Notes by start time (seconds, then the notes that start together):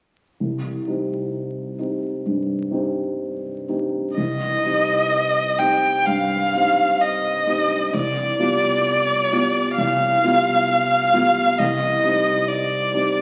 0.40 C2
0.88 C4 D#4 G4
1.79 C4 D#4 G4
2.26 G2
2.71 C4 D#4 G4
3.69 C4 D#4 G4
4.17 C2 D#5
4.64 C4 D#4 G4
5.59 C4 D#4 G4 G5
6.06 G2 F5
6.55 C4 D#4 G4
7.00 D#5
7.47 C4 D#4 G4
7.93 C2 D5
8.39 B3 F4 G4
9.32 B3 F4 G4
9.78 C2 F5
10.24 B3 F4 G4
11.13 B3 F4 G4
11.58 C2 D#5
12.04 C4 D#4 G4
12.48 D5
12.94 C4 D#4 G4